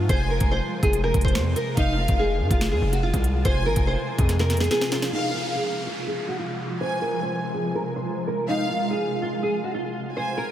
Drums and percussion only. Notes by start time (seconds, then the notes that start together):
0.09 kick, closed hi-hat
0.40 kick, closed hi-hat
0.83 kick, closed hi-hat
0.93 closed hi-hat
1.04 cross-stick
1.14 kick, closed hi-hat
1.21 kick, closed hi-hat
1.28 closed hi-hat
1.35 finger snap, snare
1.56 closed hi-hat
1.77 kick, closed hi-hat
2.08 kick, closed hi-hat
2.51 kick, closed hi-hat
2.61 finger snap, snare
2.93 closed hi-hat
3.14 kick, closed hi-hat
3.24 closed hi-hat
3.45 kick, closed hi-hat
3.76 kick, closed hi-hat
4.18 kick, closed hi-hat
4.29 snare, closed hi-hat
4.39 snare
4.50 snare, closed hi-hat
4.57 snare, closed hi-hat
4.64 closed hi-hat
4.71 snare
4.81 snare
4.92 snare, closed hi-hat
5.02 snare